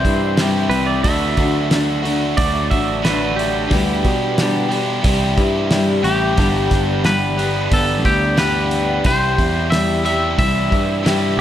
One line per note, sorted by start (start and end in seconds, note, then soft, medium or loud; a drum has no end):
0.00 0.36 C3 medium
0.00 0.36 E3 medium
0.00 0.36 G3 medium
0.00 0.35 E4 medium
0.00 0.35 G4 medium
0.00 0.68 C5 medium
0.05 0.68 G2 medium
0.05 0.38 G3 soft
0.05 0.38 C4 soft
0.05 0.38 E4 soft
0.05 kick medium
0.05 open hi-hat soft
0.37 1.04 C3 medium
0.37 1.05 E3 medium
0.37 1.05 G3 medium
0.37 1.05 C4 medium
0.37 1.05 E4 medium
0.37 snare medium
0.37 open hi-hat medium
0.42 1.04 G4 medium
0.70 1.02 C2 medium
0.70 0.86 B4 medium
0.70 open hi-hat soft
0.87 1.03 D5 medium
1.03 1.36 D2 medium
1.03 1.38 D3 medium
1.03 2.02 F#3 medium
1.03 1.38 A3 medium
1.03 1.38 D4 medium
1.03 1.36 F#4 medium
1.03 2.33 E5 medium
1.03 kick loud
1.03 open hi-hat medium
1.37 2.33 D2 medium
1.37 1.70 A3 soft
1.37 1.71 D4 medium
1.37 1.71 F#4 medium
1.37 kick medium
1.37 open hi-hat soft
1.70 2.04 D3 medium
1.70 2.04 A3 medium
1.70 2.04 D4 medium
1.70 2.02 F#4 medium
1.70 snare medium
1.70 open hi-hat medium
2.04 3.01 D3 medium
2.04 3.03 F#3 medium
2.04 2.37 A3 soft
2.04 2.38 D4 medium
2.04 2.37 F#4 medium
2.04 open hi-hat soft
2.37 2.71 D2 medium
2.37 2.71 D3 medium
2.37 2.71 A3 medium
2.37 2.71 D4 medium
2.37 2.70 F#4 medium
2.37 2.70 D5 medium
2.37 kick loud
2.37 open hi-hat medium
2.70 3.67 A1 medium
2.70 3.05 A3 soft
2.70 3.05 D4 soft
2.70 3.04 F#4 medium
2.70 3.03 E5 medium
2.70 kick medium
2.70 open hi-hat soft
3.04 3.70 D3 medium
3.04 3.67 F#3 medium
3.04 3.72 A3 medium
3.04 3.72 D4 medium
3.04 3.70 F#4 medium
3.04 3.37 B4 medium
3.04 snare loud
3.04 open hi-hat medium
3.36 4.66 G4 medium
3.36 open hi-hat soft
3.71 4.02 D2 medium
3.71 4.04 D3 medium
3.71 4.05 E3 medium
3.71 4.05 G3 medium
3.71 4.05 B3 medium
3.71 4.04 G4 medium
3.71 kick loud
3.71 open hi-hat medium
4.05 5.00 B2 medium
4.05 4.38 G3 soft
4.05 4.38 B3 soft
4.05 4.38 G4 medium
4.05 kick medium
4.05 open hi-hat soft
4.38 4.71 D3 medium
4.38 4.72 E3 medium
4.38 4.72 G3 medium
4.38 4.71 B3 medium
4.38 4.69 G4 medium
4.38 snare medium
4.38 open hi-hat medium
4.71 5.02 D3 medium
4.71 5.04 G3 soft
4.71 5.04 B3 soft
4.71 5.04 G4 medium
4.71 open hi-hat soft
5.02 5.36 C2 medium
5.02 6.01 C3 medium
5.02 5.37 E3 medium
5.02 5.38 G3 medium
5.02 5.38 E4 medium
5.02 kick loud
5.02 open hi-hat medium
5.06 5.37 G4 medium
5.38 6.01 G2 medium
5.38 5.71 G3 soft
5.38 5.71 E4 medium
5.38 5.71 G4 medium
5.38 kick medium
5.38 open hi-hat soft
5.71 6.38 C3 medium
5.71 6.38 E3 medium
5.71 6.39 G3 medium
5.71 6.39 E4 medium
5.71 6.39 G4 medium
5.71 snare loud
5.71 open hi-hat medium
6.03 6.36 A1 medium
6.03 6.37 E3 medium
6.03 6.38 G3 medium
6.03 6.39 E4 medium
6.03 6.40 G4 medium
6.03 7.07 G4 medium
6.03 open hi-hat soft
6.07 6.37 C3 medium
6.38 6.69 G1 medium
6.38 6.71 G2 medium
6.38 6.71 D3 medium
6.38 6.71 E3 medium
6.38 6.71 G3 medium
6.38 6.71 B3 medium
6.38 7.37 D4 medium
6.38 6.70 G4 medium
6.38 kick loud
6.38 open hi-hat medium
6.71 7.67 G1 medium
6.71 7.04 E3 soft
6.71 7.04 G3 soft
6.71 7.05 B3 soft
6.71 7.05 G4 medium
6.71 kick medium
6.71 snare soft
6.71 open hi-hat soft
7.04 7.38 G2 medium
7.04 7.38 D3 medium
7.04 7.38 E3 medium
7.04 7.37 G3 medium
7.04 7.36 B3 medium
7.04 7.36 G4 medium
7.04 7.74 B4 medium
7.04 snare medium
7.04 open hi-hat medium
7.37 7.68 E3 soft
7.37 7.69 G3 soft
7.37 7.70 B3 soft
7.37 8.36 D4 medium
7.37 7.71 G4 soft
7.37 open hi-hat soft
7.41 8.35 G2 medium
7.41 8.36 D3 medium
7.69 8.05 G1 medium
7.69 8.04 E3 medium
7.69 8.04 G3 medium
7.69 8.03 B3 medium
7.69 8.02 G4 medium
7.69 kick loud
7.69 open hi-hat medium
7.73 8.05 A4 medium
8.03 9.01 D2 medium
8.03 8.36 E3 soft
8.03 8.36 G3 soft
8.03 8.37 B3 soft
8.03 8.37 G4 medium
8.03 8.39 G4 medium
8.03 kick medium
8.03 open hi-hat soft
8.37 9.04 G2 medium
8.37 9.04 D3 medium
8.37 9.05 E3 medium
8.37 9.05 G3 medium
8.37 9.05 B3 medium
8.37 9.04 D4 medium
8.37 9.05 G4 medium
8.37 9.01 B4 medium
8.37 snare loud
8.37 open hi-hat medium
8.71 open hi-hat soft
9.04 9.37 C2 medium
9.04 9.38 C3 medium
9.04 9.39 E3 medium
9.04 9.38 G3 medium
9.04 9.37 E4 medium
9.04 9.35 G4 medium
9.04 9.70 C5 medium
9.04 kick loud
9.04 open hi-hat medium
9.37 10.35 E2 medium
9.37 9.69 G3 soft
9.37 9.70 E4 soft
9.37 9.70 G4 soft
9.37 kick medium
9.37 open hi-hat soft
9.70 10.04 C3 medium
9.70 10.05 E3 medium
9.70 10.05 G3 medium
9.70 10.04 E4 medium
9.70 10.03 G4 medium
9.70 10.04 E5 medium
9.70 snare loud
9.70 open hi-hat medium
10.04 11.02 C3 medium
10.04 11.03 E3 medium
10.04 10.37 G3 soft
10.04 10.37 E4 soft
10.04 10.38 G4 soft
10.04 10.38 E5 medium
10.04 open hi-hat soft
10.36 10.70 C2 medium
10.36 10.71 E3 medium
10.36 10.72 G3 medium
10.36 10.71 E4 medium
10.36 10.69 G4 medium
10.36 11.35 E5 medium
10.36 kick loud
10.36 open hi-hat medium
10.70 11.35 G2 medium
10.70 11.04 G3 soft
10.70 11.04 E4 soft
10.70 11.04 G4 medium
10.70 kick medium
10.70 open hi-hat soft
11.04 11.41 C3 medium
11.04 11.41 E3 medium
11.04 11.41 G3 medium
11.04 11.41 E4 medium
11.04 11.41 G4 medium
11.04 snare loud
11.04 open hi-hat medium
11.37 11.41 C2 medium